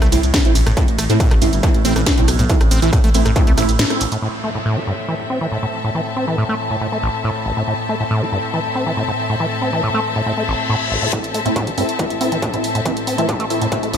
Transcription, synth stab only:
0.12 A3 C4 E4
0.45 A3 C4 E4
0.77 A3 C4 E4
1.10 A3 C4 E4
1.42 A3 C4 E4
1.63 A3 C4 E4
1.85 A3 C4 E4
2.18 A3 C4 E4
2.50 A3 C4 E4
2.82 A3 C4 E4
3.14 A3 C4 E4
3.36 A3 C4 E4
3.57 A3 C4 E4
3.90 A3 C4 E4
11.13 A3 C4 E4
11.46 A3 C4 E4
11.78 A3 C4 E4
11.99 A3 C4 E4
12.21 A3 C4 E4
12.54 A3 C4 E4
12.86 A3 C4 E4
13.18 A3 C4 E4
13.50 A3 C4 E4
13.72 A3 C4 E4
13.93 A3 C4 E4

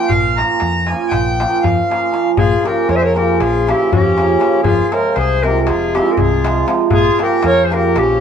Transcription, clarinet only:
2.39 G#4
2.67 A#4
2.90 C#5
2.96 E5
3.03 C#5
3.16 A#4
3.41 G#4
3.70 G4
3.92 G4
4.63 G#4
4.93 C#5
5.15 C5
5.43 A#4
5.62 A#4
5.67 G#4
5.95 G4
6.12 A#4
6.18 G#4
6.92 G#4
7.23 A#4
7.46 C#5
7.64 C5
7.74 A#4
7.98 G4

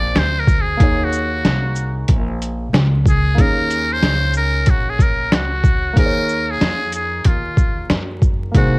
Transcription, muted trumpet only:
Already playing: D5
0.18 C5
0.40 A#4
0.61 G#4
1.04 F#4
3.09 G#4
3.40 A#4
3.92 C5
4.37 A#4
4.70 F#4
4.89 G#4
5.02 A#4
5.34 F#4
5.98 A#4
6.51 G#4
6.95 G#4
7.26 F4
8.57 F#4

